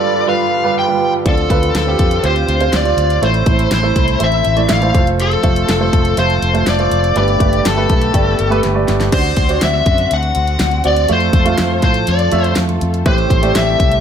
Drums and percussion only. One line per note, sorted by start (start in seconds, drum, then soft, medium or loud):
1.26 kick loud
1.26 closed hi-hat medium
1.38 closed hi-hat soft
1.50 kick medium
1.50 closed hi-hat medium
1.63 closed hi-hat soft
1.75 snare loud
1.75 closed hi-hat medium
1.99 kick medium
1.99 closed hi-hat medium
2.11 closed hi-hat soft
2.24 closed hi-hat medium
2.36 closed hi-hat soft
2.49 closed hi-hat medium
2.61 closed hi-hat soft
2.73 snare loud
2.73 closed hi-hat medium
2.85 closed hi-hat soft
2.98 closed hi-hat medium
3.10 closed hi-hat soft
3.23 closed hi-hat medium
3.34 closed hi-hat soft
3.46 kick medium
3.46 closed hi-hat medium
3.59 closed hi-hat medium
3.71 snare loud
3.71 closed hi-hat medium
3.96 kick medium
3.96 closed hi-hat medium
4.08 closed hi-hat soft
4.20 closed hi-hat medium
4.32 closed hi-hat soft
4.45 closed hi-hat medium
4.57 closed hi-hat soft
4.69 snare medium
4.69 closed hi-hat medium
4.82 closed hi-hat soft
4.95 kick medium
4.95 closed hi-hat medium
5.07 closed hi-hat soft
5.20 closed hi-hat medium
5.32 closed hi-hat soft
5.43 kick medium
5.43 closed hi-hat medium
5.56 closed hi-hat medium
5.69 snare loud
5.69 closed hi-hat medium
5.93 kick medium
5.93 closed hi-hat medium
6.05 closed hi-hat soft
6.17 closed hi-hat medium
6.30 closed hi-hat soft
6.42 closed hi-hat medium
6.55 closed hi-hat soft
6.67 snare loud
6.67 closed hi-hat medium
6.79 closed hi-hat soft
6.91 closed hi-hat medium
7.04 closed hi-hat soft
7.16 closed hi-hat medium
7.28 closed hi-hat soft
7.40 kick medium
7.40 closed hi-hat medium
7.53 closed hi-hat medium
7.65 snare loud
7.65 closed hi-hat medium
7.90 kick medium
7.90 closed hi-hat medium
8.02 closed hi-hat soft
8.14 kick medium
8.14 closed hi-hat medium
8.39 closed hi-hat medium
8.52 closed hi-hat soft
8.63 snare soft
8.63 closed hi-hat medium
8.88 snare medium
8.88 closed hi-hat medium
9.00 snare medium
9.00 closed hi-hat soft
9.12 kick medium
9.12 closed hi-hat medium
9.12 crash medium
9.24 closed hi-hat soft
9.37 kick medium
9.37 closed hi-hat medium
9.49 closed hi-hat medium
9.61 snare loud
9.61 closed hi-hat medium
9.86 kick medium
9.86 closed hi-hat medium
9.98 closed hi-hat soft
10.11 closed hi-hat medium
10.23 closed hi-hat soft
10.35 closed hi-hat medium
10.48 closed hi-hat soft
10.59 snare loud
10.59 closed hi-hat medium
10.71 closed hi-hat soft
10.84 closed hi-hat medium
10.96 closed hi-hat soft
11.09 closed hi-hat medium
11.21 closed hi-hat soft
11.33 kick medium
11.33 closed hi-hat medium
11.46 closed hi-hat medium
11.58 snare loud
11.58 closed hi-hat medium
11.82 kick medium
11.82 closed hi-hat medium
11.94 closed hi-hat soft
12.07 closed hi-hat medium
12.19 closed hi-hat soft
12.32 closed hi-hat medium
12.44 closed hi-hat soft
12.56 snare loud
12.56 closed hi-hat medium
12.69 closed hi-hat soft
12.81 closed hi-hat medium
12.94 closed hi-hat soft
13.06 kick loud
13.06 closed hi-hat medium
13.18 closed hi-hat soft
13.30 kick medium
13.30 closed hi-hat medium
13.43 closed hi-hat medium
13.55 snare loud
13.55 closed hi-hat medium
13.80 kick medium
13.80 closed hi-hat medium
13.92 closed hi-hat soft